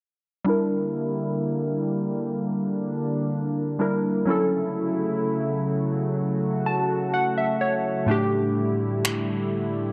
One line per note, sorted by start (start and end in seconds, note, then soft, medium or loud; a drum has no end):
0.45 4.24 D3 medium
0.45 3.75 G3 medium
0.45 4.24 G3 medium
0.45 4.24 A#3 medium
0.45 3.76 D4 medium
0.45 2.35 E4 medium
0.45 3.76 E4 medium
0.49 3.77 A#4 medium
2.36 4.25 D4 medium
3.79 4.27 G3 medium
3.79 4.27 D4 soft
3.79 4.27 E4 soft
3.79 4.28 A#4 medium
4.25 8.05 C#3 medium
4.25 8.03 F#3 medium
4.25 8.04 F#3 medium
4.25 9.92 A3 medium
4.25 8.04 C#4 medium
4.25 6.16 E4 medium
4.25 8.05 E4 medium
4.30 8.06 A4 medium
6.18 8.06 F#4 medium
6.66 7.10 A5 medium
7.14 7.35 F#5 medium
7.38 7.59 E5 medium
7.61 8.05 C#5 medium
8.06 9.92 A2 medium
8.06 9.92 D3 medium
8.06 9.92 G3 medium
8.06 9.92 A3 medium
8.06 9.92 D4 medium
8.06 9.92 E4 medium
8.11 9.92 G4 medium
9.05 finger snap loud